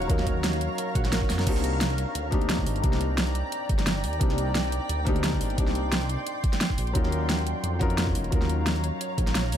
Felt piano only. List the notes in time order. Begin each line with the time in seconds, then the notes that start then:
Already playing: F#3 C#4 D#4 F4 F#4 A#4 F5
0.08 F#3 C#4 D#4 A#4 F5
1.45 A#3 C4 D4 D#4 G4
2.31 A#3 C4 D4 D#4 G4
2.82 A#3 C4 D4 D#4 G4
4.19 A#3 C4 D4 D#4 G4
5.05 A#3 C4 D4 D#4 G4
5.56 A#3 C4 D4 D#4 G4
6.93 F#3 C#4 D#4 F4 A#4
7.79 C#4 D#4 F4 F#4 A#4
8.31 F#3 C#4 D#4 F4 A#4